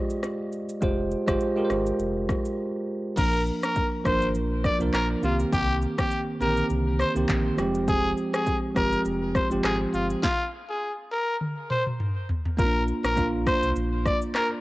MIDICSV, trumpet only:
0, 0, Header, 1, 2, 480
1, 0, Start_track
1, 0, Tempo, 588235
1, 669, Time_signature, 4, 2, 24, 8
1, 11920, End_track
2, 0, Start_track
2, 0, Title_t, "Trumpet"
2, 0, Program_c, 0, 56
2, 2592, Note_on_c, 0, 70, 84
2, 2795, Note_off_c, 0, 70, 0
2, 2964, Note_on_c, 0, 70, 76
2, 3167, Note_off_c, 0, 70, 0
2, 3314, Note_on_c, 0, 72, 84
2, 3516, Note_off_c, 0, 72, 0
2, 3795, Note_on_c, 0, 74, 74
2, 3905, Note_off_c, 0, 74, 0
2, 4034, Note_on_c, 0, 70, 84
2, 4144, Note_off_c, 0, 70, 0
2, 4275, Note_on_c, 0, 65, 73
2, 4385, Note_off_c, 0, 65, 0
2, 4513, Note_on_c, 0, 67, 96
2, 4716, Note_off_c, 0, 67, 0
2, 4885, Note_on_c, 0, 67, 78
2, 5087, Note_off_c, 0, 67, 0
2, 5233, Note_on_c, 0, 70, 80
2, 5435, Note_off_c, 0, 70, 0
2, 5714, Note_on_c, 0, 72, 86
2, 5824, Note_off_c, 0, 72, 0
2, 6433, Note_on_c, 0, 68, 84
2, 6635, Note_off_c, 0, 68, 0
2, 6806, Note_on_c, 0, 68, 75
2, 7008, Note_off_c, 0, 68, 0
2, 7153, Note_on_c, 0, 70, 80
2, 7356, Note_off_c, 0, 70, 0
2, 7635, Note_on_c, 0, 72, 73
2, 7745, Note_off_c, 0, 72, 0
2, 7873, Note_on_c, 0, 68, 85
2, 7983, Note_off_c, 0, 68, 0
2, 8113, Note_on_c, 0, 65, 76
2, 8224, Note_off_c, 0, 65, 0
2, 8352, Note_on_c, 0, 65, 101
2, 8555, Note_off_c, 0, 65, 0
2, 8726, Note_on_c, 0, 68, 78
2, 8928, Note_off_c, 0, 68, 0
2, 9071, Note_on_c, 0, 70, 86
2, 9274, Note_off_c, 0, 70, 0
2, 9553, Note_on_c, 0, 72, 82
2, 9663, Note_off_c, 0, 72, 0
2, 10271, Note_on_c, 0, 70, 89
2, 10474, Note_off_c, 0, 70, 0
2, 10645, Note_on_c, 0, 70, 81
2, 10847, Note_off_c, 0, 70, 0
2, 10993, Note_on_c, 0, 72, 86
2, 11196, Note_off_c, 0, 72, 0
2, 11475, Note_on_c, 0, 74, 81
2, 11585, Note_off_c, 0, 74, 0
2, 11714, Note_on_c, 0, 70, 87
2, 11824, Note_off_c, 0, 70, 0
2, 11920, End_track
0, 0, End_of_file